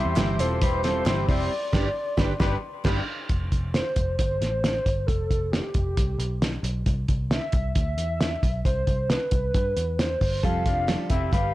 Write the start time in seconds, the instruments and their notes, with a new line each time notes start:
Already playing: steel-string acoustic guitar G3 C4 E4 C5, transistor combo organ E4 G4 C5, clean electric guitar E4 G4, soft synth lead E5, glockenspiel C6
0.05 picked electric bass E2
0.16 picked electric bass G1, steel-string acoustic guitar C3 E3 G3 C4 E4 C5, transistor combo organ E4 G4 C5, snare, clap, closed hi-hat
0.39 picked electric bass E1, steel-string acoustic guitar G3 C4 E4 C5, transistor combo organ E4 G4 C5, clean electric guitar F4 A4, soft synth lead C5, closed hi-hat
0.61 steel-string acoustic guitar G3 C4 E4 C5, transistor combo organ E4 G4 C5, clean electric guitar G4 B4, soft synth lead C5, kick, closed hi-hat
0.83 steel-string acoustic guitar G3 C4 E4 C5, transistor combo organ E4 G4 C5, clean electric guitar F4 A4, snare, closed hi-hat
1.06 picked electric bass G1, steel-string acoustic guitar C3 E3 G3 C4 E4 C5, transistor combo organ E4 G4 C5, clean electric guitar E4 G4, snare, clap, closed hi-hat
1.28 picked electric bass F1, steel-string acoustic guitar G3 C4 E4 C5, transistor combo organ E4 G4 C5, clean electric guitar E4 G4, soft synth lead D5, kick, open hi-hat
1.72 picked electric bass G1, transistor combo organ D4 G4, steel-string acoustic guitar D4 G4 B4, kick, snare, crash
2.17 picked electric bass G1, transistor combo organ D4 G4 B4, steel-string acoustic guitar D4 G4 B4, kick, snare
2.40 picked electric bass G1, steel-string acoustic guitar G3 D4 G4 B4, transistor combo organ D4 G4 B4, clean electric guitar G4 B4, kick, snare
2.84 picked electric bass G1, steel-string acoustic guitar G3 D4 G4 B4, transistor combo organ D4 G4 B4, clean electric guitar D4 G4, kick, snare, crash
3.29 picked electric bass F1, kick, closed hi-hat
3.52 picked electric bass F1, kick, closed hi-hat
3.74 soft synth lead C5, snare, closed hi-hat
3.96 picked electric bass F1, kick, closed hi-hat
4.18 picked electric bass G1, soft synth lead C5, kick, closed hi-hat
4.41 picked electric bass A1, snare, closed hi-hat
4.64 snare, closed hi-hat
4.86 picked electric bass G1, kick, closed hi-hat
5.07 picked electric bass F1, soft synth lead A4, kick, closed hi-hat
5.31 picked electric bass F1, kick, closed hi-hat
5.52 soft synth lead G4, snare, closed hi-hat
5.74 picked electric bass F1, kick, closed hi-hat
5.97 picked electric bass C2, kick, closed hi-hat
6.18 picked electric bass B1, closed hi-hat
6.42 snare, closed hi-hat
6.63 picked electric bass B1, closed hi-hat
6.86 picked electric bass C2, kick, closed hi-hat
7.08 picked electric bass C2, kick, closed hi-hat
7.31 soft synth lead E5, snare, closed hi-hat
7.52 picked electric bass C2, kick, closed hi-hat
7.74 picked electric bass D2, soft synth lead E5, kick, closed hi-hat
7.97 picked electric bass E2, closed hi-hat
8.21 snare, closed hi-hat
8.43 picked electric bass B1, kick, closed hi-hat
8.65 picked electric bass C2, soft synth lead C5, kick, closed hi-hat
8.87 picked electric bass C2, kick, closed hi-hat
9.10 soft synth lead B4, snare, closed hi-hat
9.31 picked electric bass C2, kick, closed hi-hat
9.54 picked electric bass G2, kick, closed hi-hat
9.77 picked electric bass E2, closed hi-hat
9.99 soft synth lead C5, snare, closed hi-hat
10.21 picked electric bass G1, kick, open hi-hat
10.43 picked electric bass F1, steel-string acoustic guitar F3 G3 C4 G4 A4, clean electric guitar F4 A4, soft synth lead F5, kick, closed hi-hat
10.66 picked electric bass F1, steel-string acoustic guitar C4 G4 A4, clean electric guitar D4 F4, kick, closed hi-hat
10.87 steel-string acoustic guitar F3 G3 C4 G4 A4, snare, closed hi-hat
11.09 picked electric bass F1, steel-string acoustic guitar C4 G4 A4, clean electric guitar E4 G4, soft synth lead E5, kick, closed hi-hat
11.31 picked electric bass G1, steel-string acoustic guitar G3 C4 G4 A4, clean electric guitar G4 B4, soft synth lead F5, kick, closed hi-hat